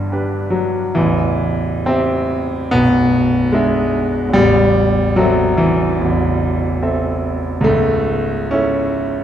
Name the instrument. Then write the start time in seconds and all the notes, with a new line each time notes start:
grand piano
Already playing: G1 G2 D3 E3 D4 G4 B4
0.12 D4 G4 B4
0.50 F#3
0.95 A0 A1 E3
1.86 C4 G4 E5
2.71 B0 B1 B3
3.52 G#3 D4 G#4 E5
4.29 A0
4.33 A1 G3
5.16 F#3 C4 A4 E5
5.57 E3
6.00 A0 A1
6.82 C4 A4 E5
7.61 C#2 A3
7.66 C#1
8.51 C#4 E4 A4 E5